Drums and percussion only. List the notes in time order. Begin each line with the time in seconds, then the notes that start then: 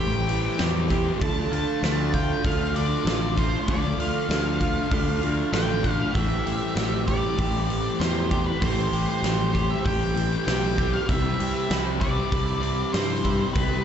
0.29 open hi-hat
0.59 snare, open hi-hat
0.90 kick, open hi-hat
1.21 kick, open hi-hat
1.53 open hi-hat
1.83 snare, open hi-hat
2.13 kick, open hi-hat
2.44 kick, open hi-hat
2.76 open hi-hat
3.07 snare, open hi-hat
3.38 kick, open hi-hat
3.68 kick, open hi-hat
4.00 open hi-hat
4.31 snare, open hi-hat
4.61 kick, open hi-hat
4.91 kick, open hi-hat
5.23 open hi-hat
5.53 snare, open hi-hat
5.84 kick, open hi-hat
6.15 kick, open hi-hat
6.47 open hi-hat
6.77 snare, open hi-hat
7.08 kick, open hi-hat
7.38 kick, open hi-hat
7.70 open hi-hat
8.01 snare, open hi-hat
8.31 kick, open hi-hat
8.62 kick, open hi-hat
8.93 open hi-hat
9.24 snare, open hi-hat
9.55 kick, open hi-hat
9.86 kick, open hi-hat
10.17 open hi-hat
10.48 snare, open hi-hat
10.78 kick, open hi-hat
11.09 kick, open hi-hat
11.40 open hi-hat
11.71 snare, open hi-hat
12.01 kick, open hi-hat
12.32 kick, open hi-hat
12.63 open hi-hat
12.94 snare, open hi-hat
13.25 kick, open hi-hat
13.55 kick, open hi-hat